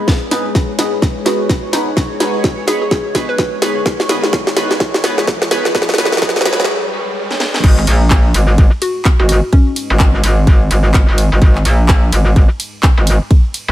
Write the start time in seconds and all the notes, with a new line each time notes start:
Already playing: G#3 G#4 B4
0.08 C#5, kick, snare, riser
0.31 B3 D#4 G#4 B4, snare, open hi-hat
0.55 kick, snare
0.79 B3 D#4 G#4 B4, snare, open hi-hat
1.02 kick, snare
1.26 B3 D#4 F#4 G#4 B4, snare, open hi-hat
1.49 kick, snare
1.73 B3 D#4 G#4 B4, snare, open hi-hat
1.97 kick, snare
2.20 B3 D#4 G#4 B4, snare, open hi-hat
2.44 kick, snare
2.67 B3 D#4 G#4 B4, snare, open hi-hat
2.82 G#4
2.91 kick, snare
3.15 B3 D#4 G#4 B4, kick, snare, open hi-hat
3.29 B4
3.38 kick, snare
3.62 B3 D#4 G#4 B4, snare, open hi-hat
3.86 kick, snare
4.00 snare
4.09 B3 D#4 G#4 B4, snare, open hi-hat
4.23 snare
4.33 kick, snare
4.47 snare
4.57 B3 D#4 G#4 B4, snare, open hi-hat
4.71 snare
4.80 kick, snare
4.94 snare
5.04 B3 D#4 G#4 B4, snare, open hi-hat
5.18 snare
5.27 kick, snare
5.42 snare
5.51 B3 D#4 G#4 B4, snare, open hi-hat
5.65 snare
5.75 B3 D#4 G#4 B4, kick, snare
5.82 snare
5.89 snare
5.94 snare
5.98 B3 D#4 G#4 B4, snare, open hi-hat
6.05 snare
6.12 snare
6.17 snare
6.22 B3 D#4 G#4 B4, kick, snare
6.29 snare
6.36 snare
6.41 snare
6.46 B3 D#4 G#4 B4, snare, open hi-hat
6.53 snare
6.60 snare
6.64 snare
7.31 snare
7.40 snare
7.54 snare
7.64 G#1 G#3 G#4 B4 D#5, kick, crash, ride
7.78 clap
7.87 A#1, open hi-hat, ride
8.10 kick, clap, ride
8.34 G#1, open hi-hat, ride
8.58 kick, ride
8.82 F#4, open hi-hat, ride
9.05 kick, clap, ride
9.20 G#1 F#4
9.29 F#4, open hi-hat, ride
9.53 C#4, kick, ride
9.76 open hi-hat, ride
9.90 G#1
10.00 kick, clap, ride
10.23 G#1, open hi-hat, ride
10.47 kick, ride
10.71 G#1, open hi-hat, ride
10.94 kick, clap, ride
11.08 G#1
11.18 open hi-hat, ride
11.32 G#1
11.42 G#1, kick, ride
11.55 clap
11.65 A#1, open hi-hat, ride
11.88 kick, clap, ride
12.12 G#1, open hi-hat, ride
12.36 kick, ride
12.60 open hi-hat, ride
12.83 kick, clap, ride
12.98 G#1
13.07 open hi-hat, ride
13.31 kick, ride
13.54 open hi-hat, ride
13.68 G#1